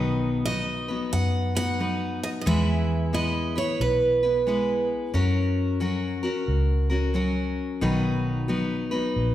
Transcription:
0.00 0.90 B1 medium
0.00 0.46 B2 medium
0.00 0.46 D#3 medium
0.00 0.44 F#3 medium
0.00 0.46 B3 medium
0.00 0.46 D#4 medium
0.00 0.47 B4 medium
0.00 0.44 D#5 loud
0.45 0.89 F#3 medium
0.45 0.89 B3 medium
0.45 0.88 D#4 medium
0.45 0.87 B4 medium
0.45 1.12 D#5 medium
0.88 1.56 F#3 soft
0.88 1.56 B3 soft
0.88 1.55 D#4 soft
0.88 1.54 B4 medium
1.13 2.23 F#2 medium
1.13 1.55 F#5 medium
1.55 1.78 F#3 soft
1.55 1.79 B3 soft
1.55 1.80 D#4 soft
1.55 1.80 B4 soft
1.55 2.19 F#5 loud
1.79 2.46 F#3 medium
1.79 2.46 B3 medium
1.79 2.47 D#4 medium
1.79 2.46 B4 medium
2.23 2.28 D#5 medium
2.41 2.47 D#5 medium
2.46 3.57 E2 medium
2.46 3.13 E3 medium
2.46 3.12 G#3 medium
2.46 3.12 B3 medium
2.46 3.13 E4 medium
2.46 3.13 B4 medium
2.46 3.14 E5 medium
3.13 3.56 G#3 medium
3.13 3.56 B3 medium
3.13 3.55 E4 medium
3.13 3.54 B4 medium
3.13 3.57 D#5 medium
3.56 4.24 B3 soft
3.56 4.23 E4 soft
3.56 4.22 B4 medium
3.56 3.82 C#5 medium
3.80 4.91 B1 medium
3.80 4.87 B4 medium
4.23 4.46 B3 soft
4.23 4.47 E4 soft
4.23 4.47 B4 medium
4.47 5.13 G#3 medium
4.47 5.14 B3 medium
4.47 5.14 E4 medium
4.47 5.14 B4 medium
5.14 6.25 F#2 medium
5.14 5.80 F#3 medium
5.14 5.79 C#4 medium
5.14 5.81 F#4 medium
5.14 5.81 A#4 medium
5.80 6.24 F#3 medium
5.80 6.24 C#4 medium
5.80 6.23 F#4 medium
5.80 6.22 A#4 medium
6.23 6.91 C#4 soft
6.23 6.90 F#4 medium
6.23 6.88 A#4 medium
6.48 7.59 C#2 medium
6.90 7.13 C#4 soft
6.90 7.14 F#4 medium
6.90 7.14 A#4 medium
7.14 7.82 F#3 medium
7.14 7.82 C#4 medium
7.14 7.82 F#4 medium
7.14 7.82 A#4 medium
7.81 8.92 B1 medium
7.81 8.49 B2 medium
7.81 8.49 D#3 medium
7.81 8.47 F#3 medium
7.81 8.48 B3 medium
7.81 8.48 D#4 medium
7.81 8.49 B4 medium
8.48 8.92 F#3 medium
8.48 8.91 B3 medium
8.48 8.91 D#4 medium
8.48 8.90 B4 medium
8.91 9.35 F#3 soft
8.91 9.35 B3 medium
8.91 9.35 D#4 medium
8.91 9.35 B4 medium
9.16 9.35 A#1 medium

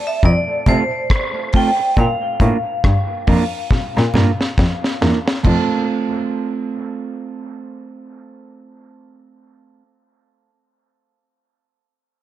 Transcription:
0.07 0.25 E5 medium
0.23 0.32 F2 loud
0.23 0.69 D5 medium
0.23 kick loud
0.23 hi-hat pedal medium
0.23 low conga medium
0.66 0.75 C3 medium
0.66 0.82 A3 medium
0.66 0.82 C4 medium
0.66 0.83 F4 medium
0.66 0.83 A4 medium
0.66 1.57 C5 medium
0.66 kick medium
0.66 closed hi-hat medium
0.66 low conga medium
1.10 kick loud
1.10 cross-stick loud
1.53 1.69 A3 medium
1.53 1.69 C4 medium
1.53 1.69 F4 medium
1.53 1.70 A4 medium
1.53 2.00 G5 medium
1.53 kick medium
1.53 open hi-hat medium
1.79 muted clean electric guitar stroke soft
1.97 2.05 A#2 loud
1.97 4.55 F5 medium
1.97 kick loud
1.97 hi-hat pedal medium
1.97 low conga medium
2.40 2.49 A2 medium
2.40 2.56 A#3 medium
2.40 2.56 D4 medium
2.40 2.56 F4 medium
2.40 2.57 A#4 medium
2.40 kick medium
2.40 closed hi-hat medium
2.40 low conga medium
2.84 2.93 G2 medium
2.84 kick loud
2.84 cross-stick loud
3.27 3.36 F2 medium
3.27 3.43 A#3 medium
3.27 3.43 D4 medium
3.27 3.43 F4 medium
3.27 3.44 A#4 medium
3.27 kick medium
3.27 open hi-hat medium
3.71 kick loud
3.71 snare medium
3.71 low conga medium
3.97 4.05 A#2 medium
3.97 snare soft
4.14 4.23 G2 medium
4.14 4.30 A#3 medium
4.14 4.30 D4 medium
4.14 4.30 F4 medium
4.14 4.30 A#4 medium
4.14 snare medium
4.14 low conga medium
4.41 snare medium
4.58 4.66 F2 medium
4.58 kick loud
4.58 snare medium
4.84 snare medium
5.01 5.10 E2 medium
5.01 5.17 A#3 medium
5.01 5.17 D4 medium
5.01 5.17 F4 medium
5.01 5.18 A#4 medium
5.01 snare medium
5.26 muted clean electric guitar stroke soft
5.26 snare medium
5.43 5.53 F2 medium
5.43 9.81 A3 medium
5.43 9.83 C4 medium
5.43 9.84 F4 medium
5.43 kick medium
5.43 crash medium
5.43 low conga medium
5.48 9.86 A4 medium

